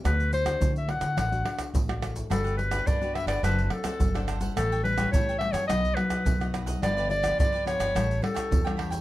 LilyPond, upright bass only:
\new Staff \with { instrumentName = "Upright bass" } { \clef bass \time 4/4 \key g \major \tempo 4 = 106 d,4 d8. d16 a,,8 r8 a,,4 | g,,4 g,8. g,,16 fis,,8 r8 g,,4 | a,,4 a,8. fis,16 b,,8 r8 b,,4 | g,,4 g,8. g,,16 a,,8 r8 e,4 | }